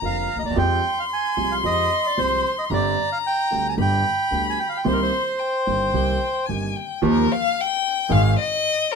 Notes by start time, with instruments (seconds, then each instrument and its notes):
Already playing: violin A#5
0.02 upright bass F1, grand piano F1 F2 D3 F3 A#3 F4, bandoneon F5
0.36 upright bass D2, grand piano D2, bandoneon D#5
0.42 upright bass D#2, grand piano D#2, bandoneon D5
0.50 upright bass E2, grand piano E2
0.56 grand piano F2 F3 G#3 C4 G4, upright bass F2, bandoneon G5, violin C6
1.00 bandoneon F5
1.13 bandoneon G#5
1.37 grand piano C2 C3 F3 G#3 C4 G4, upright bass C2
1.52 bandoneon F5
1.63 upright bass F2, grand piano F2 F3 G#3 C4 G4, bandoneon D#5
2.06 bandoneon D5
2.17 grand piano C2 C3 F3 G#3 C4 G4, upright bass C2, bandoneon C5
2.59 bandoneon D#5
2.70 upright bass G1, grand piano G1 G2 D3 G3 C4 G4, bandoneon D5, violin A#5
3.12 bandoneon F5
3.27 bandoneon G5
3.51 grand piano D2 D3 G3 C4 G4, upright bass D2
3.69 bandoneon G#5
3.77 grand piano G1 G2 D3 G3 B3 G4, upright bass G1, violin B5
3.82 bandoneon G5
4.31 grand piano D2 D3 G3 B3 G4, upright bass D2
4.50 bandoneon G#5
4.60 bandoneon G5
4.69 bandoneon F5
4.77 bandoneon G5
4.84 grand piano C2 C3 D#3 A#3 C4 G4, upright bass C2, bandoneon C5, violin C6
4.92 bandoneon A#4
5.02 bandoneon C5
5.39 violin G5
5.67 grand piano G1 G2 D#3 A#3 C4 G4, upright bass G1
5.93 grand piano C2 C3 D#3 A#3 C4 G4, upright bass C2
6.46 upright bass G1, grand piano G1 G2 D#3 A#3 C4 G4, violin G#5
6.76 violin G5
7.02 grand piano D#2 D#3 F3 A#3 D#4 G4, upright bass D#2, violin A#4
7.32 violin F5
7.61 violin G5
8.09 grand piano G#1 G#2 D#3 G#3 C4 G#4, upright bass G#1, violin F5
8.40 violin D#5
8.92 violin A#4